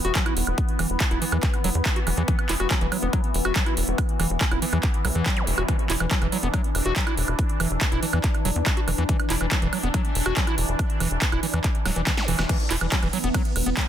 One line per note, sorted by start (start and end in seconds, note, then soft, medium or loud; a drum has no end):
0.00 12.48 E3 medium
0.00 5.71 B3 medium
0.00 impact medium
0.05 0.11 E1 medium
0.05 0.13 F#4 loud
0.05 closed hi-hat soft
0.15 0.23 F#3 medium
0.15 kick loud
0.15 clap loud
0.15 closed hi-hat loud
0.26 0.34 E4 medium
0.26 closed hi-hat soft
0.26 high woodblock medium
0.37 0.43 E1 loud
0.37 open hi-hat medium
0.47 0.54 E1 medium
0.47 closed hi-hat soft
0.47 high woodblock soft
0.58 kick loud
0.58 closed hi-hat medium
0.69 closed hi-hat soft
0.79 0.86 E1 medium
0.79 0.87 E3 medium
0.79 open hi-hat loud
0.79 high woodblock medium
0.90 0.96 E1 medium
0.90 closed hi-hat soft
1.00 kick loud
1.00 clap loud
1.00 closed hi-hat medium
1.00 high woodblock soft
1.11 1.18 E1 medium
1.11 1.19 E4 medium
1.11 closed hi-hat soft
1.22 1.25 E3 medium
1.22 open hi-hat medium
1.32 1.39 E2 medium
1.32 1.38 E3 loud
1.32 closed hi-hat soft
1.32 high woodblock medium
1.43 kick loud
1.43 clap medium
1.43 closed hi-hat loud
1.54 closed hi-hat soft
1.54 high woodblock soft
1.64 1.71 E1 loud
1.64 1.70 F#3 loud
1.64 open hi-hat loud
1.75 1.82 E2 medium
1.75 closed hi-hat soft
1.86 kick loud
1.86 clap loud
1.86 closed hi-hat loud
1.86 high woodblock medium
1.96 1.99 F#4 medium
1.96 closed hi-hat soft
2.07 2.13 E1 medium
2.07 2.10 E3 medium
2.07 open hi-hat loud
2.07 high woodblock soft
2.17 2.24 E2 medium
2.17 2.23 E3 loud
2.17 closed hi-hat soft
2.28 2.36 E3 medium
2.28 kick loud
2.28 closed hi-hat medium
2.39 closed hi-hat soft
2.39 high woodblock medium
2.49 2.56 E1 medium
2.49 2.55 E4 loud
2.49 clap medium
2.49 open hi-hat loud
2.60 2.67 E1 medium
2.60 2.68 F#4 loud
2.60 closed hi-hat soft
2.60 high woodblock soft
2.71 2.79 F#3 medium
2.71 kick loud
2.71 clap loud
2.71 closed hi-hat medium
2.81 2.88 E1 medium
2.81 2.87 E3 loud
2.81 closed hi-hat soft
2.92 2.97 F#3 medium
2.92 open hi-hat medium
2.92 high woodblock medium
3.02 3.09 E1 medium
3.02 3.08 B3 medium
3.02 closed hi-hat soft
3.13 3.21 F#3 medium
3.13 kick loud
3.13 closed hi-hat medium
3.13 high woodblock soft
3.24 closed hi-hat soft
3.34 3.41 E1 loud
3.34 open hi-hat loud
3.45 3.52 E1 medium
3.45 3.53 F#4 loud
3.45 closed hi-hat soft
3.45 high woodblock medium
3.56 3.64 F#3 medium
3.56 kick loud
3.56 clap loud
3.56 closed hi-hat medium
3.66 3.74 E4 medium
3.66 closed hi-hat soft
3.66 high woodblock soft
3.77 3.84 E1 medium
3.77 open hi-hat loud
3.88 3.94 E1 medium
3.88 closed hi-hat soft
3.98 kick loud
3.98 closed hi-hat medium
3.98 high woodblock medium
4.09 closed hi-hat soft
4.20 4.26 E1 loud
4.20 4.28 E3 medium
4.20 open hi-hat loud
4.20 high woodblock soft
4.30 4.37 E1 medium
4.30 closed hi-hat soft
4.41 kick loud
4.41 clap loud
4.41 closed hi-hat medium
4.51 4.58 E1 medium
4.51 4.60 E4 medium
4.51 closed hi-hat soft
4.51 high woodblock medium
4.62 4.65 E3 medium
4.62 open hi-hat medium
4.73 4.79 E2 medium
4.73 4.78 E3 loud
4.73 closed hi-hat soft
4.73 high woodblock soft
4.83 kick loud
4.83 clap medium
4.83 closed hi-hat medium
4.94 closed hi-hat soft
5.05 5.11 B1 loud
5.05 5.08 F#3 loud
5.05 open hi-hat loud
5.05 high woodblock medium
5.15 5.22 E2 medium
5.15 5.27 E3 loud
5.15 closed hi-hat soft
5.26 5.38 G3 medium
5.26 kick loud
5.26 clap loud
5.26 closed hi-hat medium
5.26 high woodblock soft
5.37 5.42 E3 medium
5.37 closed hi-hat soft
5.37 zap medium
5.47 5.54 E1 medium
5.47 open hi-hat loud
5.58 5.65 E1 medium
5.58 5.63 F#4 medium
5.58 closed hi-hat soft
5.58 high woodblock medium
5.68 5.77 E3 medium
5.68 12.51 D4 medium
5.68 kick loud
5.68 closed hi-hat medium
5.68 high woodblock soft
5.79 closed hi-hat soft
5.90 5.96 E1 medium
5.90 5.95 E4 loud
5.90 clap medium
5.90 open hi-hat loud
6.00 6.07 E1 medium
6.00 6.06 E3 medium
6.00 closed hi-hat soft
6.00 high woodblock medium
6.11 6.19 F#3 medium
6.11 kick loud
6.11 clap loud
6.11 closed hi-hat medium
6.22 6.28 E1 medium
6.22 6.27 E3 loud
6.22 closed hi-hat soft
6.22 high woodblock soft
6.32 6.38 F#3 medium
6.32 open hi-hat medium
6.43 6.50 E1 medium
6.43 6.48 B3 medium
6.43 closed hi-hat soft
6.54 6.62 F#3 medium
6.54 kick loud
6.54 closed hi-hat medium
6.54 high woodblock medium
6.64 closed hi-hat soft
6.75 6.82 E1 medium
6.75 open hi-hat loud
6.75 high woodblock soft
6.86 6.92 E1 medium
6.86 6.94 F#4 loud
6.86 closed hi-hat soft
6.96 7.04 F#3 medium
6.96 kick loud
6.96 clap loud
6.96 closed hi-hat medium
7.07 7.15 E4 medium
7.07 closed hi-hat soft
7.07 high woodblock medium
7.17 7.24 E1 medium
7.17 open hi-hat loud
7.28 7.35 E1 medium
7.28 closed hi-hat soft
7.28 high woodblock soft
7.39 kick loud
7.39 closed hi-hat medium
7.49 closed hi-hat soft
7.60 7.67 E1 loud
7.60 7.68 E3 medium
7.60 open hi-hat loud
7.60 high woodblock medium
7.71 7.77 E1 medium
7.71 closed hi-hat soft
7.81 kick loud
7.81 clap loud
7.81 closed hi-hat medium
7.81 high woodblock soft
7.92 7.99 E1 medium
7.92 8.00 E4 medium
7.92 closed hi-hat soft
8.03 8.06 E3 medium
8.03 open hi-hat medium
8.13 8.20 E2 medium
8.13 8.19 E3 loud
8.13 closed hi-hat soft
8.13 high woodblock medium
8.24 kick loud
8.24 clap medium
8.24 closed hi-hat medium
8.35 closed hi-hat soft
8.35 high woodblock soft
8.45 8.52 E1 medium
8.45 8.51 F#3 loud
8.45 open hi-hat loud
8.56 8.62 E2 medium
8.56 closed hi-hat soft
8.66 kick loud
8.66 clap loud
8.66 closed hi-hat medium
8.66 high woodblock medium
8.77 8.80 F#4 medium
8.77 closed hi-hat soft
8.88 8.94 E1 medium
8.88 8.91 E3 medium
8.88 open hi-hat medium
8.88 high woodblock soft
8.98 9.05 E2 medium
8.98 9.04 E3 loud
8.98 closed hi-hat soft
9.09 9.17 E3 medium
9.09 kick loud
9.09 closed hi-hat loud
9.20 closed hi-hat soft
9.20 high woodblock medium
9.30 9.37 E1 loud
9.30 9.36 E4 loud
9.30 clap medium
9.30 open hi-hat loud
9.41 9.48 E1 medium
9.41 9.46 E3 medium
9.41 closed hi-hat soft
9.41 high woodblock soft
9.51 9.60 F#3 medium
9.51 kick loud
9.51 clap loud
9.51 closed hi-hat loud
9.62 9.69 E1 medium
9.62 9.68 E3 loud
9.62 closed hi-hat soft
9.73 9.78 F#3 medium
9.73 open hi-hat medium
9.73 high woodblock medium
9.83 9.90 E1 medium
9.83 9.89 B3 medium
9.83 closed hi-hat soft
9.94 10.02 F#3 medium
9.94 kick loud
9.94 closed hi-hat loud
9.94 high woodblock soft
10.05 closed hi-hat soft
10.15 10.22 E1 loud
10.15 open hi-hat loud
10.26 10.33 E1 medium
10.26 10.34 F#4 loud
10.26 high woodblock medium
10.37 10.45 F#3 medium
10.37 kick loud
10.37 clap loud
10.37 closed hi-hat loud
10.47 10.55 E4 medium
10.47 closed hi-hat soft
10.47 high woodblock soft
10.58 10.65 E1 medium
10.58 open hi-hat medium
10.68 10.75 E1 medium
10.68 closed hi-hat soft
10.79 kick loud
10.79 closed hi-hat loud
10.79 high woodblock medium
10.90 closed hi-hat soft
11.00 11.07 E1 loud
11.00 11.09 E3 medium
11.00 open hi-hat loud
11.00 high woodblock soft
11.11 11.18 E1 medium
11.11 closed hi-hat soft
11.22 kick loud
11.22 clap loud
11.22 closed hi-hat loud
11.32 11.39 E1 medium
11.32 11.40 E4 medium
11.32 closed hi-hat soft
11.32 high woodblock medium
11.43 11.46 E3 medium
11.43 open hi-hat medium
11.54 11.60 E2 medium
11.54 11.59 E3 loud
11.54 closed hi-hat soft
11.54 high woodblock soft
11.64 kick loud
11.64 clap medium
11.64 closed hi-hat loud
11.75 closed hi-hat soft
11.86 11.92 D1 medium
11.86 11.91 F#3 medium
11.86 snare medium
11.86 open hi-hat loud
11.86 high woodblock medium
11.96 12.03 E1 medium
11.96 12.02 E3 loud
11.96 closed hi-hat soft
12.07 12.12 E3 loud
12.07 kick loud
12.07 snare medium
12.07 clap loud
12.07 closed hi-hat medium
12.07 high woodblock soft
12.17 snare medium
12.17 closed hi-hat soft
12.17 zap medium
12.28 12.35 E1 loud
12.28 12.36 E3 loud
12.28 open hi-hat medium
12.39 12.45 E1 medium
12.39 12.42 E3 loud
12.39 snare medium
12.39 closed hi-hat soft
12.39 high woodblock medium
12.49 12.57 E3 medium
12.49 13.88 E3 medium
12.49 13.88 B3 medium
12.49 kick loud
12.49 closed hi-hat loud
12.49 crash medium
12.49 ride medium
12.49 high woodblock soft
12.60 closed hi-hat soft
12.71 12.77 E1 medium
12.71 12.76 E4 loud
12.71 clap medium
12.71 open hi-hat loud
12.81 12.88 E1 medium
12.81 12.87 E3 medium
12.81 closed hi-hat soft
12.81 high woodblock medium
12.92 13.00 F#3 medium
12.92 kick loud
12.92 clap loud
12.92 closed hi-hat loud
12.92 ride medium
13.03 13.09 E1 medium
13.03 13.08 E3 loud
13.03 closed hi-hat soft
13.03 high woodblock soft
13.13 13.19 F#3 medium
13.13 open hi-hat medium
13.24 13.30 E1 medium
13.24 13.29 B3 medium
13.24 closed hi-hat soft
13.34 13.43 F#3 medium
13.34 kick loud
13.34 closed hi-hat loud
13.34 ride medium
13.34 high woodblock medium
13.45 closed hi-hat soft
13.56 13.62 E1 medium
13.56 open hi-hat loud
13.56 high woodblock soft
13.66 13.73 E1 medium
13.66 13.70 B3 medium
13.66 closed hi-hat soft
13.77 13.85 F#3 medium
13.77 kick loud
13.77 clap loud
13.77 closed hi-hat loud
13.77 ride medium